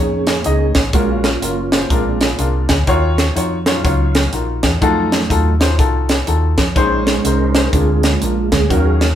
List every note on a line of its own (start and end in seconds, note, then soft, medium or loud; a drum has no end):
0.00 0.38 F2 medium
0.00 0.72 A#3 medium
0.00 0.33 C#4 medium
0.00 0.72 C#4 medium
0.00 0.33 D#4 medium
0.00 0.33 G#4 medium
0.00 0.72 G#4 medium
0.00 0.33 C#5 medium
0.27 snare loud
0.27 closed hi-hat medium
0.44 0.71 C#2 medium
0.44 0.81 C#4 medium
0.44 0.81 D#4 medium
0.44 0.82 G#4 medium
0.44 0.82 D#5 medium
0.44 closed hi-hat medium
0.75 0.91 A1 medium
0.75 kick medium
0.75 snare loud
0.75 closed hi-hat medium
0.93 1.35 A#1 medium
0.93 1.69 A#2 medium
0.93 1.29 G#3 medium
0.93 1.24 A#3 medium
0.93 1.30 C#4 medium
0.93 1.87 C#4 medium
0.93 1.30 F4 medium
0.93 1.25 F#4 loud
0.93 1.30 F#4 medium
0.93 1.31 A#4 loud
0.93 1.29 F5 medium
0.93 kick loud
0.93 closed hi-hat medium
1.24 2.66 A#3 medium
1.24 2.66 F4 medium
1.24 snare medium
1.24 closed hi-hat medium
1.42 1.83 F#1 medium
1.42 1.62 C#4 medium
1.42 1.62 F4 medium
1.42 1.63 F#4 medium
1.42 1.63 A#4 medium
1.42 closed hi-hat loud
1.72 1.84 C#4 medium
1.72 1.85 F4 medium
1.72 1.85 F#4 medium
1.72 1.85 C5 medium
1.72 snare loud
1.72 closed hi-hat medium
1.89 2.31 A#1 medium
1.89 2.66 A#2 medium
1.89 2.26 G#3 soft
1.89 2.26 C4 soft
1.89 2.27 D4 medium
1.89 2.27 F4 medium
1.89 2.27 G#4 medium
1.89 2.28 A#4 medium
1.89 kick loud
1.89 closed hi-hat medium
2.21 snare loud
2.21 closed hi-hat medium
2.38 2.65 C2 medium
2.38 2.75 D4 medium
2.38 2.75 F4 medium
2.38 2.76 G#4 medium
2.38 2.76 A#4 medium
2.38 2.67 F5 medium
2.38 closed hi-hat medium
2.69 2.85 D2 medium
2.69 2.86 G#5 medium
2.69 kick loud
2.69 snare loud
2.69 closed hi-hat medium
2.87 3.29 D#2 medium
2.87 3.63 D#3 medium
2.87 3.24 D#4 loud
2.87 3.24 F4 loud
2.87 3.24 F#4 medium
2.87 3.25 C#5 loud
2.87 kick loud
2.87 closed hi-hat medium
3.18 snare medium
3.18 closed hi-hat medium
3.35 3.77 F2 medium
3.35 3.56 D#4 medium
3.35 3.56 F4 medium
3.35 3.57 F#4 medium
3.35 3.57 C#5 medium
3.35 closed hi-hat loud
3.66 4.30 F#3 medium
3.66 4.30 C#4 medium
3.66 3.78 D#4 medium
3.66 3.79 F4 medium
3.66 3.79 F#4 medium
3.66 3.79 C#5 medium
3.66 4.31 F5 medium
3.66 snare loud
3.66 closed hi-hat medium
3.84 4.26 C#2 loud
3.84 4.21 D#4 medium
3.84 4.21 F4 medium
3.84 4.21 F#4 medium
3.84 4.21 C#5 medium
3.84 kick loud
3.84 closed hi-hat medium
4.15 snare loud
4.15 closed hi-hat medium
4.33 4.59 A#1 medium
4.33 4.69 D#4 medium
4.33 4.70 F4 medium
4.33 4.70 F#4 medium
4.33 4.70 A#4 medium
4.33 closed hi-hat medium
4.63 4.79 E2 medium
4.63 kick medium
4.63 snare loud
4.63 closed hi-hat medium
4.81 5.23 F2 medium
4.81 5.57 F#3 medium
4.81 5.57 A3 soft
4.81 5.18 D#4 loud
4.81 5.57 D#4 medium
4.81 5.18 F4 medium
4.81 5.19 F#4 loud
4.81 5.19 A4 loud
4.81 kick loud
4.81 closed hi-hat medium
5.12 snare medium
5.12 closed hi-hat medium
5.29 5.79 D#2 medium
5.29 5.50 D#4 medium
5.29 5.51 F4 medium
5.29 5.51 F#4 medium
5.29 5.51 A4 medium
5.29 kick medium
5.29 closed hi-hat loud
5.60 5.72 D#4 medium
5.60 5.73 F4 medium
5.60 5.73 F#4 medium
5.60 5.73 C5 medium
5.60 snare loud
5.60 closed hi-hat medium
5.78 6.20 C2 medium
5.78 6.15 D#4 medium
5.78 6.15 F4 medium
5.78 6.16 F#4 medium
5.78 6.16 A4 medium
5.78 kick loud
5.78 closed hi-hat medium
6.09 snare loud
6.09 closed hi-hat medium
6.27 6.54 D#2 medium
6.27 6.64 D#4 medium
6.27 6.64 F4 medium
6.27 6.64 F#4 medium
6.27 6.64 A4 medium
6.27 closed hi-hat medium
6.58 6.73 F2 medium
6.58 kick medium
6.58 snare loud
6.58 closed hi-hat medium
6.75 7.17 A#1 medium
6.75 7.51 A#2 medium
6.75 7.69 G#3 medium
6.75 7.12 C#4 loud
6.75 7.69 C#4 soft
6.75 7.69 D#4 medium
6.75 7.13 D#4 loud
6.75 7.13 G#4 medium
6.75 7.69 C5 soft
6.75 7.13 C5 loud
6.75 kick loud
6.75 closed hi-hat medium
7.07 7.25 C#5 medium
7.07 snare medium
7.07 closed hi-hat medium
7.25 7.66 C2 medium
7.25 7.45 C#4 medium
7.25 7.45 D#4 medium
7.25 7.45 G#4 medium
7.25 7.54 A#4 medium
7.25 7.46 C5 medium
7.25 closed hi-hat loud
7.55 7.67 C#4 medium
7.55 7.67 D#4 medium
7.55 7.68 G#4 medium
7.55 7.74 A#4 loud
7.55 7.68 C5 medium
7.55 snare loud
7.55 closed hi-hat medium
7.73 8.14 D2 loud
7.73 8.49 D3 medium
7.73 8.03 G#3 soft
7.73 8.09 C4 soft
7.73 8.10 D4 medium
7.73 8.10 F4 medium
7.73 8.02 F4 medium
7.73 8.10 G#4 medium
7.73 8.05 G#4 medium
7.73 8.10 A#4 medium
7.73 kick loud
7.73 closed hi-hat medium
8.03 8.66 G#3 medium
8.03 8.66 A#3 medium
8.03 8.49 F4 medium
8.03 snare loud
8.03 closed hi-hat medium
8.21 8.48 A#1 medium
8.21 8.58 D4 medium
8.21 8.58 F4 medium
8.21 8.59 G#4 medium
8.21 8.59 A#4 medium
8.21 closed hi-hat medium
8.51 8.68 D2 medium
8.51 8.70 G#4 medium
8.51 kick medium
8.51 snare loud
8.51 closed hi-hat medium
8.69 9.15 D#2 medium
8.69 9.15 D#3 medium
8.69 9.06 F#3 medium
8.69 9.06 C#4 medium
8.69 8.99 C#4 medium
8.69 9.07 D#4 medium
8.69 9.07 F#4 medium
8.69 8.99 F#4 medium
8.69 8.86 A#4 loud
8.69 9.07 A#4 medium
8.69 9.06 F5 medium
8.69 kick loud
8.69 closed hi-hat medium
8.85 9.01 G#4 medium
9.00 9.15 A#3 medium
9.00 9.15 C#4 soft
9.00 9.15 F#4 medium
9.00 snare medium
9.00 closed hi-hat medium